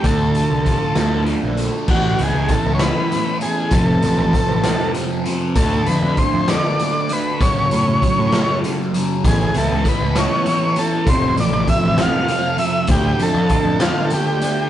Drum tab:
CC |------|x-----|------|------|
HH |xxxxxx|-xxxxx|xxxxxx|xxxxxx|
SD |---o--|---o--|---o--|---o--|
BD |o-o---|o-o---|o-o---|o-o---|

CC |------|------|------|------|
HH |xxxxxx|xxxxxx|xxxxxx|xxxxxx|
SD |---o--|---o--|---o--|---o--|
BD |o-o---|o-o---|o-o---|o-o---|